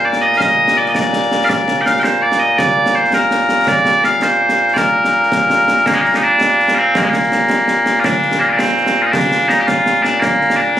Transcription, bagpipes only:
0.00 10.80 A#2 medium
0.00 5.87 A#3 medium
0.05 0.22 D5 loud
0.22 0.37 D#5 medium
0.37 0.42 F5 loud
0.42 0.78 D#5 loud
0.78 0.88 D5 medium
0.88 0.96 D#5 medium
0.96 1.45 D5 medium
1.45 1.49 F5 loud
1.49 1.81 D5 loud
1.81 1.86 G5 medium
1.86 2.00 F5 medium
2.00 2.22 C5 medium
2.00 2.03 G5 medium
2.22 2.39 D5 medium
2.39 2.58 D#5 medium
2.58 2.95 D5 loud
2.95 3.14 C5 medium
3.14 3.68 A#4 medium
3.68 4.04 D5 loud
4.04 4.23 F5 medium
4.23 4.74 C5 medium
4.74 5.87 A#4 medium
4.74 4.77 D5 medium
5.87 5.94 A#3 medium
5.94 6.01 G#3 medium
6.01 6.16 A#3 medium
6.16 6.23 D#4 medium
6.23 6.75 D4 loud
6.75 6.97 C4 medium
6.75 6.78 F4 medium
6.97 7.03 A#3 medium
7.03 7.09 G#3 medium
7.09 8.00 A#3 medium
8.00 8.05 F4 medium
8.05 8.40 D4 medium
8.40 8.49 A#3 medium
8.49 8.58 D4 medium
8.49 8.53 F4 medium
8.58 9.02 C4 medium
9.02 9.06 F4 medium
9.06 9.11 D#4 medium
9.11 9.48 D4 loud
9.48 9.60 D#4 medium
9.60 9.67 G4 medium
9.67 10.02 F4 loud
10.02 10.20 D4 medium
10.20 10.57 A#3 medium
10.57 10.80 D4 medium

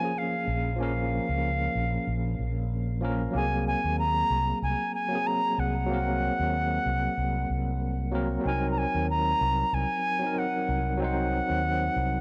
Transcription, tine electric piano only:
0.00 0.76 F3 medium
0.00 0.78 A#3 medium
0.00 0.02 C#4 medium
0.00 0.77 C#4 medium
0.00 0.05 G#4 medium
0.05 0.78 G#4 medium
0.76 2.97 F3 medium
0.76 2.99 A#3 medium
0.80 3.00 C#4 medium
0.80 3.01 A#4 loud
3.01 3.30 F3 medium
3.01 3.31 A#3 medium
3.01 3.32 C#4 medium
3.01 3.32 A#4 loud
3.31 5.06 F#3 medium
3.31 5.07 A#3 medium
3.35 5.08 C4 medium
3.35 5.09 G#4 medium
5.08 5.85 F#3 medium
5.08 5.86 A#3 medium
5.13 5.87 C4 medium
5.13 5.88 G#4 medium
5.86 8.08 F#3 medium
5.86 8.09 A#3 medium
5.91 8.11 C4 medium
5.91 8.12 A#4 loud
8.12 8.40 F#3 medium
8.12 8.42 A#3 medium
8.12 8.42 C4 medium
8.12 8.43 A#4 loud
8.41 10.16 F#3 medium
8.41 10.18 C4 medium
8.46 10.19 D#4 medium
8.46 10.20 A#4 medium
10.19 10.96 F#3 medium
10.19 10.97 C4 medium
10.24 10.98 D#4 medium
10.24 10.99 A#4 medium
10.97 12.21 F#3 medium
10.97 12.21 C4 medium
11.02 12.21 D#4 medium
11.02 12.21 C5 loud

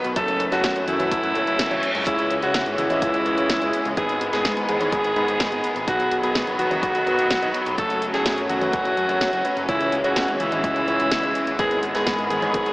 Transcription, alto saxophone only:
0.16 0.44 A4 medium
0.52 0.80 F#4 medium
0.88 1.90 E4 loud
2.07 2.35 E4 medium
2.43 2.70 F#4 medium
2.78 3.88 E4 loud
3.97 4.25 G#4 loud
4.33 4.61 G#4 medium
4.69 5.78 G#4 loud
5.88 6.15 F#4 loud
6.23 6.51 G#4 medium
6.59 7.69 F#4 loud
7.78 8.06 A4 medium
8.14 8.42 G#4 medium
8.49 9.52 F#4 loud
9.69 9.96 E4 loud
10.04 10.32 F#4 medium
10.40 11.50 E4 loud
11.59 11.87 G#4 loud
11.95 12.23 G#4 medium
12.31 12.73 G#4 loud

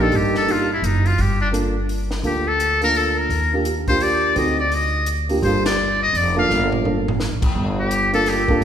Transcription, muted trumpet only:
0.02 0.17 A4 medium
0.15 0.36 G4 medium
0.37 0.53 A4 medium
0.51 0.71 F4 medium
0.73 0.87 E4 medium
0.85 1.08 D#4 medium
1.06 1.23 F4 medium
1.21 1.40 G4 medium
1.41 1.49 D4 medium
2.26 2.49 G4 medium
2.48 2.82 A4 medium
2.84 2.99 A#4 loud
2.97 3.20 A4 medium
3.18 3.53 A#4 medium
3.89 4.04 C5 medium
4.02 4.39 D5 medium
4.38 4.59 D#5 medium
4.59 4.76 D5 medium
4.74 5.08 D#5 medium
5.44 5.64 C5 medium
5.66 5.98 D5 medium
6.03 6.18 D#5 medium
6.17 6.37 D5 medium
6.39 6.70 F5 medium
7.79 8.11 G4 medium
8.14 8.30 A4 medium
8.29 8.63 G4 medium

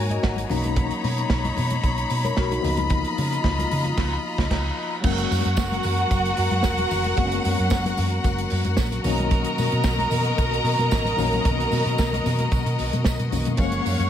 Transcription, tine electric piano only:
0.00 0.45 F#3 medium
0.00 0.46 A#3 medium
0.00 0.46 B3 medium
0.00 0.46 D#4 medium
0.00 0.52 A#4 medium
0.00 0.52 C#5 medium
0.11 0.22 D#5 medium
0.24 0.73 F#5 medium
0.49 2.59 F#3 medium
0.49 2.60 A#3 medium
0.49 2.60 C#4 medium
0.49 2.08 D#4 medium
2.24 2.36 A#4 medium
2.24 2.36 C#5 medium
2.37 2.50 F#4 medium
2.37 2.51 A#4 medium
2.52 2.63 D#4 medium
2.52 2.77 F#4 medium
2.62 3.94 F3 medium
2.62 3.94 A#3 medium
2.62 3.95 B3 medium
2.62 3.95 D#4 medium
5.01 7.12 F#3 medium
5.01 7.13 G#3 medium
5.01 7.13 A#3 medium
5.01 7.14 C#4 medium
7.15 9.00 F#3 medium
7.15 9.00 G#3 medium
7.15 9.01 A#3 medium
7.15 7.25 B3 medium
7.25 9.04 C#4 medium
9.04 11.14 D#3 medium
9.04 11.14 F#3 medium
9.04 11.15 A#3 medium
9.04 11.15 C#4 medium
11.17 13.27 D#3 medium
11.17 13.27 F#3 medium
11.17 13.28 A#3 medium
11.17 13.29 C#4 medium
13.31 13.58 D#3 medium
13.31 13.59 F#3 soft
13.31 13.57 A#3 medium
13.31 13.58 C#4 medium
13.57 14.10 F3 medium
13.57 14.10 G#3 medium
13.57 14.10 A#3 medium
13.57 14.10 C#4 medium

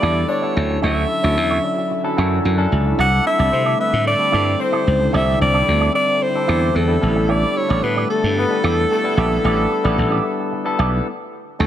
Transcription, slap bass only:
0.03 0.23 E2 medium
0.57 0.77 D2 medium
0.83 1.04 D2 loud
1.24 1.37 D2 medium
1.37 1.58 E2 medium
2.18 2.38 F#2 medium
2.45 2.65 F#2 medium
2.72 2.92 C#2 medium
2.99 3.19 C2 loud
3.39 3.49 C2 medium
3.53 3.73 C3 medium
3.93 4.13 A2 medium
4.34 4.54 G2 medium
4.87 5.07 C#2 medium
5.14 5.34 C2 loud
5.41 5.61 C2 medium
5.68 5.88 D2 medium
6.49 6.69 E2 medium
6.76 6.96 E2 medium
7.03 7.43 A1 medium
7.70 7.80 A1 loud
7.83 8.03 A2 medium
8.24 8.44 G2 medium
8.64 8.84 E2 loud
9.17 9.38 A#1 medium
9.44 9.65 A1 loud
9.85 9.95 A1 medium
9.98 10.18 A1 medium
10.79 10.99 B1 medium
11.60 11.67 D2 loud

